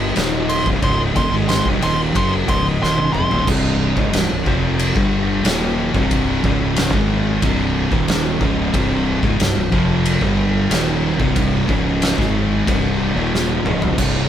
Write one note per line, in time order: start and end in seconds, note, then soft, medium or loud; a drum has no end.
0.00 0.13 G1 loud
0.00 0.15 G2 medium
0.00 0.15 D3 loud
0.00 0.16 G3 medium
0.00 3.44 C4 medium
0.00 3.43 D#5 medium
0.00 3.44 G5 medium
0.16 0.62 D#1 medium
0.16 0.64 D#2 medium
0.16 0.65 A#2 loud
0.16 0.65 D#3 loud
0.16 snare loud
0.16 ride loud
0.49 0.65 C6 loud
0.49 ride medium
0.65 0.81 C1 medium
0.65 0.81 C2 medium
0.65 0.81 G2 medium
0.65 kick loud
0.81 1.13 C#1 loud
0.81 1.14 C#2 loud
0.81 1.14 G#2 loud
0.81 1.14 C#3 loud
0.81 0.99 C6 loud
0.81 kick loud
0.81 ride loud
1.15 1.31 D#1 loud
1.15 1.30 D#2 medium
1.15 1.31 A#2 loud
1.15 1.32 C6 loud
1.15 kick loud
1.15 ride medium
1.31 1.63 G#1 loud
1.31 1.64 G#2 medium
1.31 1.64 D#3 medium
1.31 1.64 G#3 loud
1.49 1.65 C6 loud
1.49 snare loud
1.49 ride loud
1.65 1.81 C1 loud
1.65 1.80 C2 medium
1.65 1.81 G2 loud
1.65 kick loud
1.81 2.13 D#1 loud
1.81 2.13 D#2 medium
1.81 2.13 A#2 medium
1.81 2.14 D#3 medium
1.81 1.99 C6 loud
1.81 ride medium
2.13 2.46 F#1 loud
2.13 2.46 F#2 medium
2.13 2.46 C#3 loud
2.13 2.47 F#3 loud
2.13 2.32 C6 loud
2.13 kick loud
2.13 ride loud
2.47 2.79 C#1 medium
2.47 2.78 C#2 medium
2.47 2.80 G#2 loud
2.47 2.80 C#3 loud
2.47 2.65 C6 loud
2.47 kick loud
2.47 ride medium
2.79 3.12 D#1 medium
2.79 3.11 D#2 medium
2.79 3.12 A#2 loud
2.79 3.13 D#3 loud
2.79 3.12 C6 medium
2.83 snare medium
2.98 high tom medium
3.12 3.30 F1 loud
3.12 3.28 F2 loud
3.12 3.29 C3 loud
3.12 3.46 C6 loud
3.12 mid tom loud
3.16 3.31 F2 medium
3.30 3.46 D#1 loud
3.30 3.45 D#2 medium
3.30 3.46 A#2 loud
3.30 floor tom loud
3.45 3.93 C1 loud
3.45 3.95 C2 loud
3.45 3.95 G2 loud
3.45 3.96 C3 loud
3.45 kick loud
3.45 crash loud
3.95 4.12 C#1 loud
3.95 4.12 C#2 medium
3.95 4.12 G#2 loud
3.95 kick loud
4.12 4.29 C1 medium
4.12 4.27 C2 medium
4.12 4.28 G2 medium
4.12 snare loud
4.12 ride bell medium
4.28 4.45 C1 medium
4.28 4.44 C2 medium
4.28 4.45 G2 medium
4.45 4.92 F1 loud
4.45 4.93 F2 medium
4.45 4.94 C3 medium
4.45 4.94 F3 loud
4.45 kick loud
4.79 ride bell medium
4.93 5.42 G1 loud
4.93 5.43 G2 medium
4.93 5.44 D3 medium
4.93 5.44 G3 loud
4.93 kick loud
5.44 5.91 D#1 medium
5.44 5.93 D#2 loud
5.44 5.94 A#2 loud
5.44 5.94 D#3 loud
5.44 snare loud
5.44 ride bell medium
5.94 6.41 C1 loud
5.94 6.43 C2 medium
5.94 6.43 G2 loud
5.94 6.43 C3 loud
5.94 kick loud
6.11 kick loud
6.11 ride bell medium
6.43 6.90 C#1 loud
6.43 6.92 C#2 loud
6.43 6.92 G#2 medium
6.43 6.93 C#3 loud
6.43 kick loud
6.76 snare loud
6.76 ride bell medium
6.93 7.39 G#1 medium
6.93 7.42 G#2 medium
6.93 7.42 D#3 loud
6.93 7.42 G#3 loud
6.93 kick loud
7.42 7.88 C1 medium
7.42 7.90 C2 medium
7.42 7.91 G2 loud
7.42 7.92 C3 loud
7.42 kick loud
7.42 ride bell medium
7.91 8.38 D#1 medium
7.91 8.40 D#2 loud
7.91 8.40 A#2 loud
7.91 8.41 D#3 loud
7.91 kick loud
8.08 snare loud
8.08 ride bell medium
8.40 8.72 C#1 loud
8.40 8.71 C#2 medium
8.40 8.72 G#2 medium
8.40 8.73 C#3 loud
8.40 kick loud
8.72 9.20 C1 loud
8.72 9.21 C2 loud
8.72 9.22 G2 loud
8.72 9.22 C3 loud
8.72 kick loud
8.72 ride bell medium
9.22 9.38 C#1 medium
9.22 9.38 C#2 medium
9.22 9.38 G#2 loud
9.22 kick loud
9.38 9.55 C1 medium
9.38 9.54 C2 medium
9.38 9.54 G2 medium
9.38 snare loud
9.38 ride bell medium
9.55 9.71 C1 medium
9.55 9.71 C2 medium
9.55 9.72 G2 medium
9.71 10.18 F1 medium
9.71 10.20 F2 loud
9.71 10.21 C3 loud
9.71 10.21 F3 loud
9.71 kick loud
10.06 ride bell medium
10.20 10.67 G1 loud
10.20 10.69 G2 medium
10.20 10.69 D3 loud
10.20 10.70 G3 medium
10.20 kick loud
10.69 11.16 D#1 loud
10.69 11.18 D#2 medium
10.69 11.18 A#2 loud
10.69 11.19 D#3 loud
10.69 snare loud
10.69 ride bell medium
11.19 11.65 C1 loud
11.19 11.67 C2 medium
11.19 11.68 G2 medium
11.19 11.68 C3 loud
11.19 kick loud
11.36 kick loud
11.36 ride bell medium
11.68 12.14 C#1 loud
11.68 12.16 C#2 medium
11.68 12.16 G#2 loud
11.68 12.17 C#3 loud
11.68 kick loud
12.02 snare loud
12.02 ride bell medium
12.17 12.63 G#1 medium
12.17 12.66 G#2 medium
12.17 12.66 D#3 loud
12.17 12.66 G#3 loud
12.17 kick loud
12.17 snare soft
12.67 13.13 C1 medium
12.67 13.15 C2 loud
12.67 13.15 G2 loud
12.67 13.16 C3 loud
12.67 kick loud
12.67 ride bell medium
13.15 13.61 D#1 loud
13.15 13.64 D#2 loud
13.15 13.64 A#2 medium
13.15 13.64 D#3 loud
13.35 snare medium
13.64 13.95 C#1 loud
13.64 13.96 C#2 medium
13.64 13.97 G#2 loud
13.64 13.97 C#3 loud
13.64 mid tom loud
13.82 floor tom loud
13.96 14.29 C1 medium
13.96 14.29 C2 loud
13.96 14.29 G2 loud
13.96 14.29 C3 loud
13.96 14.29 C4 medium
13.96 14.29 G5 medium
13.96 kick loud
13.96 crash loud